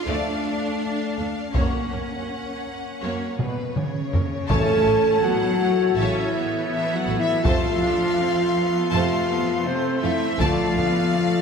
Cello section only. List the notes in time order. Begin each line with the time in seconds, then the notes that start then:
0.07 D4
1.54 C#4
3.40 B2
3.76 C#3
4.50 A3
5.23 F#3
5.97 E3
6.70 E3
6.95 F#3
7.19 E3
7.44 F3
8.92 F3
9.66 C3
10.03 E3
10.40 F3